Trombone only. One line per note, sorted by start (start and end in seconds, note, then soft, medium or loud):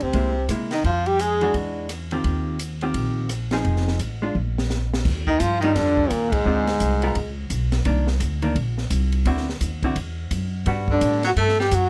0.03 0.50 C4 medium
0.73 0.84 D#4 medium
0.86 1.08 F4 medium
1.07 1.23 G4 medium
1.21 1.55 G#4 medium
5.29 5.43 D#4 medium
5.42 5.62 F4 loud
5.63 5.78 D#4 medium
5.76 6.12 D4 medium
6.11 6.34 A#3 medium
6.32 7.37 G#3 medium
10.92 11.23 D4 medium
11.27 11.32 F#4 medium
11.39 11.58 A4 medium
11.62 11.76 G4 medium
11.75 11.89 F#4 medium